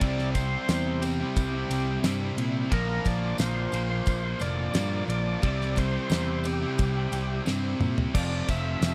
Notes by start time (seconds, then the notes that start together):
Already playing: D5
0.01 C2 C3 G3 C4 E4, kick, ride, tambourine
0.18 G3 C4 E4, snare
0.34 C3 G3 C4 E4 C5, kick, ride, tambourine
0.68 E2 C3 G3 C4 E4, snare, ride, tambourine
0.86 G3 C4 E4
1.02 C3 G3 C4 G4, muted distorted electric guitar stroke, ride, tambourine
1.20 G3 C4 E4
1.36 C2, kick, ride, tambourine
1.53 G3 C4 E4
1.70 C2 C3 G3 C4 E4, ride, tambourine
2.03 G2 C3 G3 C4 E4, snare, ride, tambourine
2.20 G3 C4 E4
2.37 A#2 C3 G3 C4 E4, ride, tambourine
2.71 A#1 A#2 D3 F3 A#3 F4 A#4, kick, ride, tambourine
2.88 F3 A#3 F4
3.05 A#1 D3 F3 A#3 F4 D5, kick, ride, tambourine
3.38 A#1 A#2 D3 F3 A#3 F4 C5, snare, ride, tambourine
3.55 F3 A#3 F4
3.72 A#1 A#2 F3 A#3, muted distorted electric guitar stroke, ride, tambourine
3.90 F3 A#3 F4 C5
4.06 A#1, kick, ride, tambourine
4.23 F3 A#3 F4
4.39 F1 D3 F3 A#3 F4 D5, ride, tambourine
4.73 G2 A#2 D3 F3 A#3 F4, snare, ride, tambourine
4.91 F3 A#3 F4
5.07 A#1 D3 F3 A#3 F4 D5, ride, tambourine
5.42 C2 C3 G3 C4 E4, kick, ride, tambourine
5.59 G3 C4 E4, snare
5.75 C3 G3 C4 E4 C5, kick, ride, tambourine
6.10 E2 C3 G3 C4 E4, snare, ride, tambourine
6.27 G3 C4 E4
6.44 C3 G3 C4 G4, muted distorted electric guitar stroke, ride, tambourine
6.62 G3 C4 E4
6.78 C2, kick, ride, tambourine
6.95 G3 C4 E4
7.12 C2 C3 G3 C4 E4, ride, tambourine
7.46 G2 C3 G3 C4 E4, snare, tambourine
7.62 G3 C4 E4
7.80 A#2 C3 G3 C4 E4, mid tom, tambourine
7.98 floor tom
8.14 F1 F2 C3 F3 A3 C4 F4 D5, kick, tambourine, crash
8.32 A3 C4 F4
8.48 F1 F3 A3 C4 F4 E5, kick, ride, tambourine
8.81 F1 F3 A3 C4 F4, snare, ride, tambourine